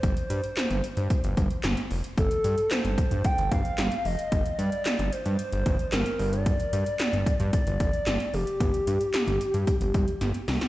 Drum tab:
HH |xxxxxxxxxxxxxxox|xxxxxxxxxxxxxxox|xxxxxxxxxxxxxxox|xxxxxxxxxxxxxxox|
CP |----x-------x---|----x-------x---|----x-------x---|----x-------x---|
SD |----o-------o---|----o-------o---|----o-------o---|----o-------o---|
BD |o-------o-o-----|o-----o-o-o-----|o---------o-----|o-----o-o-o-----|

HH |xxxxxxxxxxxxxxox|
CP |----x-----------|
SD |----o-------o-oo|
BD |o-------o-o-----|